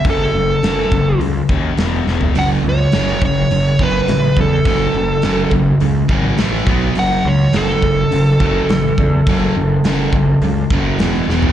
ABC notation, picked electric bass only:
X:1
M:4/4
L:1/8
Q:1/4=104
K:F#m
V:1 name="Picked electric bass" clef=bass
F,,, F,,, F,,, F,,, C,, ^D,, E,,, E,,, | F,,, C,, F,,, F,,, F,,, F,,, A,,, E,, | F,,, F,,, F,,, F,,, C,, G,,, A,,, B,,, | F,,, C,, F,,, F,,, F,,, F,,, A,,, E,, |
F,,, F,,, F,,, F,,, C,, F,,, E,,, E,,, |]